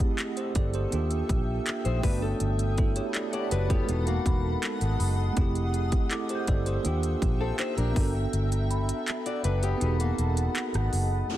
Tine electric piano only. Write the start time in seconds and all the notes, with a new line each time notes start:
Already playing: A3 C4 E4 G4
0.37 G4 C5
0.56 A4 D5
0.75 G4 C5
0.91 A#3 D4 F4
0.95 G4
1.99 A3 B3
2.05 D4 F#4
2.78 E4 A4
2.96 G4 C#5
3.15 A4 D5
3.33 G4 C#5
3.52 F#4 B4
3.70 E4 A4
3.84 G#3 B3
3.90 D#4 F#4
5.33 A3 C4
5.38 E4 G4
6.11 E4 A4
6.30 G4 C5
6.48 A4 D5
6.66 G4 C5
6.83 A#3 D4 F4
6.87 G4
7.92 B3 D4
7.98 F#4 A4
9.77 B3 D#4
9.83 F#4 G#4
11.26 F2 A3
11.30 C4 E4